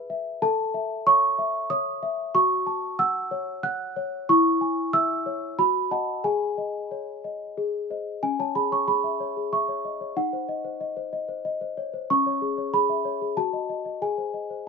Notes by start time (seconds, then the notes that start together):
Already playing: G#4 B4 E5 B5
0.10 E5
0.42 A4 A5
0.74 E5
1.07 C#5 C#6
1.39 E5
1.70 C#5 D#6
2.03 E5
2.35 F#4 C#6
2.67 A5
2.99 F#5 E6
3.31 C#5
3.63 F#5 F#6
3.96 C#5
4.29 E4 C#6
4.61 G#5
4.93 E5 E6
5.26 C#5
5.59 F#4 B5
5.91 D#5 F#5 A5
6.24 G#4 G#5
6.58 D#5
6.91 C#5
7.24 D#5
7.57 G#4
7.90 C5 D#5
8.23 C#4 G#5
8.39 C#5 A5
8.55 G#4 B5
8.72 C#5 C#6
8.88 G#4 B5
9.04 E5
9.20 C#5
9.37 G#4
9.53 E5 C#6
9.68 C#5
9.85 D#5
10.01 C#5
10.17 D#4 F#5
10.33 C5
10.49 D#5
10.64 C5
10.81 D#5
10.97 C5
11.13 D#5
11.28 C5
11.45 D#5
11.61 C5
11.77 C#5
11.93 C5
12.10 C#4 C#6
12.26 C#5
12.42 G#4
12.58 C#5
12.73 G#4 B5
12.89 E5
13.05 C#5
13.21 G#4
13.37 F#4 A5
13.53 D#5
13.70 D#5
13.85 D#5
14.02 G#4 G#5
14.18 C5
14.34 D#5
14.50 C5